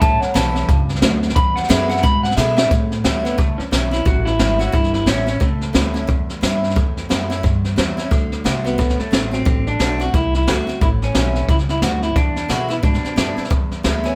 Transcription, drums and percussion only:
0.01 kick loud
0.01 snare soft
0.22 snare soft
0.35 snare loud
0.35 hi-hat pedal medium
0.55 snare soft
0.69 kick loud
0.69 snare soft
0.89 snare soft
0.95 snare soft
1.02 snare loud
1.02 hi-hat pedal loud
1.23 snare soft
1.29 snare soft
1.36 kick loud
1.36 snare soft
1.56 snare soft
1.63 snare soft
1.70 snare loud
1.70 hi-hat pedal medium
1.90 snare soft
1.97 snare soft
2.04 kick loud
2.04 snare soft
2.24 snare soft
2.31 snare soft
2.37 snare medium
2.37 hi-hat pedal loud
2.58 snare loud
2.71 kick loud
2.71 snare soft
2.91 snare soft
3.04 snare loud
3.04 hi-hat pedal medium
3.25 snare soft
3.39 kick loud
3.39 snare soft
3.60 snare soft
3.72 snare loud
3.72 hi-hat pedal medium
3.92 snare soft
4.06 kick loud
4.06 snare soft
4.26 snare soft
4.39 snare loud
4.39 hi-hat pedal medium
4.60 snare soft
4.73 kick loud
4.73 snare soft
4.84 snare soft
4.94 snare soft
5.07 snare loud
5.07 hi-hat pedal medium
5.27 snare soft
5.41 kick loud
5.41 snare soft
5.61 snare soft
5.74 snare loud
5.74 hi-hat pedal medium
5.95 snare soft
6.09 kick loud
6.09 snare soft
6.29 snare soft
6.43 snare loud
6.43 hi-hat pedal loud
6.64 snare soft
6.70 snare soft
6.76 kick loud
6.76 snare soft
6.97 snare soft
7.10 snare medium
7.10 hi-hat pedal medium
7.31 snare soft
7.44 kick loud
7.44 snare soft
7.64 snare soft
7.78 snare loud
7.78 hi-hat pedal medium
7.98 snare soft
8.11 kick loud
8.11 snare soft
8.32 snare soft
8.45 snare loud
8.45 hi-hat pedal medium
8.66 snare soft
8.79 kick loud
8.79 snare soft
8.89 snare soft
8.99 snare soft
9.13 snare loud
9.13 hi-hat pedal medium
9.33 snare soft
9.46 kick loud
9.46 snare soft
9.67 snare soft
9.80 snare loud
9.80 hi-hat pedal medium
10.00 snare soft
10.14 kick loud
10.14 snare soft
10.34 snare soft
10.48 snare loud
10.48 hi-hat pedal medium
10.68 snare soft
10.81 kick loud
10.81 snare soft
11.02 snare soft
11.15 snare loud
11.15 hi-hat pedal medium
11.35 snare soft
11.49 kick loud
11.49 snare soft
11.59 snare soft
11.69 snare soft
11.82 snare loud
11.82 hi-hat pedal medium
12.02 snare soft
12.15 kick loud
12.15 snare soft
12.36 snare soft
12.49 snare loud
12.49 hi-hat pedal medium
12.70 snare soft
12.83 kick loud
12.83 snare soft
12.94 snare soft
13.04 snare soft
13.17 snare loud
13.17 hi-hat pedal medium
13.38 snare soft
13.44 snare soft
13.51 kick loud
13.51 snare soft
13.71 snare soft
13.84 snare loud
13.84 hi-hat pedal medium
14.05 snare soft

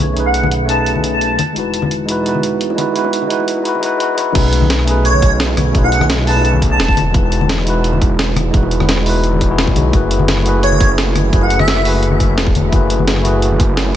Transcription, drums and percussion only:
0.17 closed hi-hat medium
0.34 closed hi-hat loud
0.43 high conga medium
0.51 closed hi-hat medium
0.69 closed hi-hat loud
0.86 closed hi-hat medium
0.95 high conga medium
1.04 closed hi-hat medium
1.21 closed hi-hat medium
1.39 closed hi-hat medium
1.39 high conga medium
1.56 closed hi-hat medium
1.74 closed hi-hat medium
1.82 high conga loud
1.91 closed hi-hat medium
2.09 closed hi-hat loud
2.26 closed hi-hat medium
2.35 high conga medium
2.43 closed hi-hat medium
2.61 closed hi-hat medium
2.70 high bongo medium
2.78 closed hi-hat medium
2.78 high conga loud
2.96 closed hi-hat medium
3.04 high bongo medium
3.13 closed hi-hat medium
3.22 high conga medium
3.30 closed hi-hat medium
3.40 high bongo medium
3.48 closed hi-hat medium
3.57 high bongo medium
3.65 closed hi-hat medium
3.75 high conga medium
3.83 closed hi-hat medium
4.00 closed hi-hat medium
4.18 closed hi-hat loud
4.18 high conga medium
4.35 kick loud
4.35 closed hi-hat medium
4.35 crash loud
4.53 closed hi-hat loud
4.62 high conga medium
4.70 snare loud
4.70 closed hi-hat medium
4.79 cross-stick soft
4.88 closed hi-hat loud
5.05 closed hi-hat medium
5.13 high conga medium
5.22 kick loud
5.22 closed hi-hat loud
5.40 snare loud
5.40 closed hi-hat medium
5.48 high bongo medium
5.57 cross-stick medium
5.57 closed hi-hat loud
5.57 high conga medium
5.75 kick loud
5.75 closed hi-hat medium
5.84 high bongo medium
5.92 closed hi-hat medium
6.01 cross-stick medium
6.01 high conga loud
6.10 snare loud
6.10 closed hi-hat medium
6.19 cross-stick soft
6.19 high bongo medium
6.27 open hi-hat medium
6.36 high bongo medium
6.45 closed hi-hat medium
6.53 high conga medium
6.62 kick medium
6.62 closed hi-hat medium
6.80 snare loud
6.80 closed hi-hat medium
6.88 kick loud
6.97 closed hi-hat loud
6.97 high conga medium
7.14 kick loud
7.14 closed hi-hat medium
7.32 closed hi-hat medium
7.41 high conga medium
7.49 snare loud
7.49 closed hi-hat medium
7.58 cross-stick soft
7.67 closed hi-hat medium
7.84 closed hi-hat medium
7.93 high conga medium
8.02 kick loud
8.02 closed hi-hat medium
8.19 snare loud
8.19 closed hi-hat medium
8.28 high bongo medium
8.36 cross-stick medium
8.36 closed hi-hat loud
8.36 high conga loud
8.54 kick loud
8.54 closed hi-hat medium
8.63 high bongo medium
8.71 closed hi-hat medium
8.80 cross-stick medium
8.80 high conga medium
8.89 snare loud
8.89 closed hi-hat medium
8.97 cross-stick soft
8.97 high bongo medium
9.06 open hi-hat medium
9.16 high bongo medium
9.24 closed hi-hat medium
9.33 high conga medium
9.41 kick medium
9.41 closed hi-hat medium
9.58 snare loud
9.58 closed hi-hat medium
9.67 kick loud
9.76 closed hi-hat medium
9.76 high conga medium
9.93 kick loud
9.93 closed hi-hat medium
10.11 closed hi-hat medium
10.19 high conga medium
10.28 snare loud
10.28 closed hi-hat medium
10.37 cross-stick soft
10.46 closed hi-hat medium
10.63 closed hi-hat medium
10.72 high conga medium
10.80 kick loud
10.80 closed hi-hat medium
10.98 snare loud
10.98 closed hi-hat medium
11.07 high bongo medium
11.15 cross-stick medium
11.15 closed hi-hat medium
11.15 high conga medium
11.33 kick loud
11.33 closed hi-hat medium
11.41 high bongo medium
11.50 closed hi-hat loud
11.59 cross-stick medium
11.59 high conga loud
11.68 snare loud
11.68 closed hi-hat medium
11.77 cross-stick soft
11.77 high bongo medium
11.85 open hi-hat medium
11.94 high bongo medium
12.03 closed hi-hat medium
12.11 high conga medium
12.20 kick medium
12.20 closed hi-hat medium
12.38 snare loud
12.38 closed hi-hat medium
12.47 kick loud
12.55 closed hi-hat medium
12.55 high conga medium
12.72 kick loud
12.72 closed hi-hat medium
12.90 closed hi-hat loud
12.99 high conga medium
13.08 snare loud
13.08 closed hi-hat medium
13.17 cross-stick soft
13.25 closed hi-hat loud
13.42 closed hi-hat medium
13.51 high conga medium
13.60 kick loud
13.60 closed hi-hat loud
13.77 snare loud
13.77 closed hi-hat medium
13.87 high bongo soft

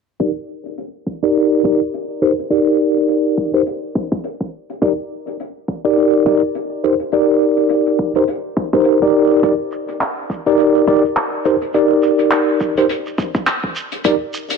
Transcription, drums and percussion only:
0.20 kick loud
0.20 closed hi-hat medium
0.66 closed hi-hat medium
0.78 closed hi-hat medium
1.07 kick medium
1.24 closed hi-hat medium
1.36 closed hi-hat medium
1.64 kick loud
1.94 closed hi-hat medium
2.39 closed hi-hat medium
2.51 closed hi-hat medium
2.96 closed hi-hat medium
3.08 closed hi-hat medium
3.38 kick medium
3.54 closed hi-hat medium
3.67 closed hi-hat medium
3.95 kick loud
4.12 kick loud
4.24 closed hi-hat medium
4.41 kick medium
4.70 closed hi-hat medium
4.82 kick loud
4.82 closed hi-hat medium
5.27 closed hi-hat medium
5.40 closed hi-hat medium
5.68 kick medium
5.85 closed hi-hat medium
5.97 closed hi-hat medium
6.26 kick loud
6.55 closed hi-hat medium
7.00 closed hi-hat medium
7.12 closed hi-hat medium
7.57 closed hi-hat medium
7.70 closed hi-hat medium
7.87 closed hi-hat medium
7.99 kick medium
8.15 closed hi-hat medium
8.28 closed hi-hat medium
8.57 kick loud
8.73 kick loud
8.85 closed hi-hat medium
9.02 kick medium
9.31 closed hi-hat soft
9.43 kick loud
9.43 closed hi-hat medium
9.43 shekere medium
9.72 shekere medium
9.88 closed hi-hat medium
9.88 shekere soft
10.01 clap loud
10.01 closed hi-hat medium
10.01 shekere medium
10.30 kick medium
10.30 shekere medium
10.46 closed hi-hat medium
10.46 shekere soft
10.59 closed hi-hat medium
10.59 shekere medium
10.75 shekere soft
10.87 kick loud
10.87 shekere medium
11.04 shekere soft
11.16 clap loud
11.16 closed hi-hat medium
11.16 shekere medium
11.45 shekere loud
11.61 closed hi-hat medium
11.61 shekere soft
11.74 closed hi-hat medium
11.74 shekere soft
12.02 shekere medium
12.19 closed hi-hat medium
12.19 shekere soft
12.31 clap loud
12.31 closed hi-hat medium
12.31 shekere medium
12.60 kick medium
12.60 shekere medium
12.77 closed hi-hat medium
12.77 shekere soft
12.89 closed hi-hat medium
12.89 shekere soft
13.06 shekere soft
13.18 kick loud
13.18 shekere medium
13.34 kick loud
13.34 shekere soft
13.47 clap loud
13.47 closed hi-hat medium
13.47 shekere soft
13.64 kick medium
13.76 shekere medium
13.92 closed hi-hat medium
13.92 shekere soft
14.04 kick loud
14.04 closed hi-hat medium
14.04 shekere soft
14.34 shekere medium
14.49 closed hi-hat medium
14.49 shekere soft

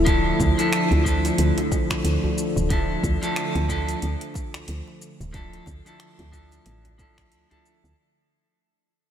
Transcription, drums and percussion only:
0.07 kick loud
0.07 closed hi-hat medium
0.07 shaker soft
0.40 kick loud
0.40 djembe slap medium
0.40 shaker medium
0.59 closed hi-hat soft
0.59 djembe tone soft
0.59 shaker soft
0.73 finger snap medium
0.73 closed hi-hat medium
0.73 shaker soft
0.92 closed hi-hat soft
0.92 djembe bass medium
1.06 kick medium
1.06 shaker medium
1.25 closed hi-hat soft
1.25 djembe slap medium
1.25 shaker soft
1.38 closed hi-hat medium
1.38 shaker soft
1.58 closed hi-hat soft
1.58 djembe tone medium
1.71 kick loud
1.71 djembe tone medium
1.71 shaker medium
1.90 finger snap medium
1.90 kick medium
1.90 djembe slap medium
1.90 shaker soft
2.05 closed hi-hat medium
2.05 shaker soft
2.24 djembe bass medium
2.38 shaker medium
2.56 djembe tone medium
2.56 shaker soft
2.70 kick loud
2.70 closed hi-hat medium
2.70 shaker soft
3.04 kick loud
3.04 shaker medium
3.22 closed hi-hat soft
3.22 djembe tone soft
3.22 shaker soft
3.36 finger snap medium
3.36 closed hi-hat medium
3.36 shaker soft
3.55 closed hi-hat soft
3.70 kick medium
3.70 shaker medium
3.89 closed hi-hat soft
3.89 shaker soft
4.02 closed hi-hat medium
4.02 shaker soft
4.21 closed hi-hat soft
4.34 kick loud
4.34 djembe slap soft
4.34 shaker medium
4.54 finger snap medium
4.54 djembe tone medium
4.54 shaker soft
4.68 closed hi-hat medium
4.68 shaker soft
4.88 djembe slap soft
5.02 shaker medium
5.20 djembe slap soft
5.20 shaker soft
5.34 kick loud
5.34 closed hi-hat medium
5.34 shaker soft
5.53 closed hi-hat soft
5.66 kick medium
5.66 djembe slap medium
5.66 shaker medium
5.86 closed hi-hat soft
5.86 djembe tone soft
5.86 shaker soft
6.00 finger snap medium
6.00 closed hi-hat medium
6.00 shaker soft
6.19 closed hi-hat soft
6.19 djembe bass medium
6.33 kick medium
6.33 djembe slap soft
6.33 shaker medium
6.51 closed hi-hat soft
6.51 djembe slap medium
6.51 shaker soft
6.66 closed hi-hat medium
6.66 shaker soft
6.85 closed hi-hat soft
6.85 djembe tone medium
6.99 kick loud
6.99 djembe tone medium
6.99 shaker medium
7.18 finger snap medium
7.18 kick medium
7.18 closed hi-hat soft
7.18 djembe slap medium
7.18 shaker soft
7.32 closed hi-hat medium
7.32 shaker soft
7.51 closed hi-hat soft
7.51 djembe bass medium
7.66 shaker medium
7.85 djembe tone medium
7.85 shaker soft

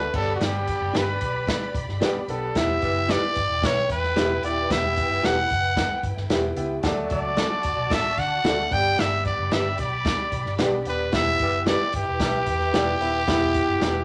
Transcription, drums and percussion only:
0.14 kick loud
0.14 crash medium
0.41 snare loud
0.41 closed hi-hat medium
0.68 kick medium
0.68 closed hi-hat medium
0.95 snare loud
0.95 closed hi-hat medium
1.21 kick medium
1.21 closed hi-hat medium
1.47 kick loud
1.47 snare loud
1.47 closed hi-hat loud
1.75 kick loud
1.75 closed hi-hat medium
1.89 snare soft
2.02 snare loud
2.02 closed hi-hat medium
2.29 closed hi-hat medium
2.55 kick medium
2.55 snare loud
2.55 closed hi-hat medium
2.82 kick medium
2.82 closed hi-hat medium
3.09 snare loud
3.09 closed hi-hat medium
3.35 kick medium
3.35 closed hi-hat medium
3.62 kick loud
3.62 snare loud
3.62 closed hi-hat loud
3.89 kick medium
3.89 closed hi-hat medium
4.04 snare soft
4.16 snare loud
4.16 closed hi-hat medium
4.43 closed hi-hat medium
4.70 kick loud
4.70 snare loud
4.70 closed hi-hat loud
4.97 kick medium
4.97 closed hi-hat medium
5.24 snare loud
5.24 closed hi-hat medium
5.50 kick medium
5.50 closed hi-hat medium
5.76 kick loud
5.76 snare loud
5.76 closed hi-hat medium
6.03 kick medium
6.03 closed hi-hat medium
6.17 snare soft
6.30 snare loud
6.30 closed hi-hat medium
6.57 closed hi-hat medium
6.83 kick loud
6.83 snare loud
6.83 closed hi-hat medium
7.10 kick medium
7.10 closed hi-hat medium
7.37 snare loud
7.37 closed hi-hat medium
7.63 kick medium
7.63 closed hi-hat medium
7.90 kick loud
7.90 snare loud
7.90 closed hi-hat loud
8.17 kick medium
8.17 closed hi-hat medium
8.44 snare loud
8.44 closed hi-hat medium
8.71 kick loud
8.71 closed hi-hat medium
8.98 snare loud
8.98 closed hi-hat medium
9.25 kick medium
9.25 closed hi-hat medium
9.51 snare loud
9.51 closed hi-hat medium
9.78 kick medium
9.78 closed hi-hat medium
10.05 kick loud
10.05 snare loud
10.05 closed hi-hat loud
10.32 kick medium
10.32 closed hi-hat medium
10.46 snare soft
10.58 snare loud
10.58 closed hi-hat medium
10.85 closed hi-hat medium
11.12 kick loud
11.12 snare loud
11.12 closed hi-hat medium
11.39 kick loud
11.39 closed hi-hat medium
11.66 snare loud
11.66 closed hi-hat medium
11.93 kick medium
11.93 closed hi-hat loud
12.20 kick loud
12.20 snare loud
12.20 closed hi-hat loud
12.46 kick medium
12.46 closed hi-hat medium
12.61 snare soft
12.74 snare loud
12.74 closed hi-hat medium
13.01 closed hi-hat medium
13.28 kick loud
13.28 snare loud
13.28 closed hi-hat medium
13.54 kick medium
13.54 closed hi-hat medium
13.81 snare loud
13.81 closed hi-hat medium

